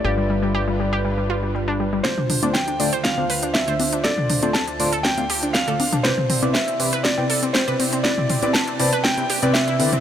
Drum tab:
HH |----------------|x-oxxxoxx-oxxxox|x-oxxxoxxxoxxxox|x-oxxxoxx-oxxxox|
SD |----------------|o---o---o---o---|o---o---o---o---|o---o---o---o---|
T2 |----------------|-oo-------------|-oo------------o|-oo-------------|
CG |----------------|---o-----o----o-|---o-----o----o-|---o-----o----o-|
BD |----------------|o---o---o---o---|o---o---o---o---|o---o---o---o---|

HH |x-oxxxoxxxoxxxox|
SD |o---o---o---o---|
T2 |-oo------------o|
CG |---o-----o----o-|
BD |o---o---o---o---|